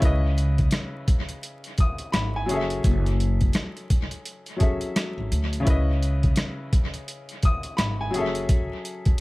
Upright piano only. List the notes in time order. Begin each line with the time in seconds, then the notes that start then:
Already playing: C#3 C#4
0.00 E4 B4
0.05 D#5
1.80 D#6
2.12 B5
2.36 G#5
2.46 F#3 C#4
2.51 G#4 A4
2.56 E5
4.57 F#3 C#4 G#4 A4
4.62 E5
5.60 C#3 C#4
5.65 E4 B4
5.70 D#5
7.45 D#6
7.77 B5
8.01 G#5
8.11 F#3 C#4
8.16 G#4 A4
8.21 E5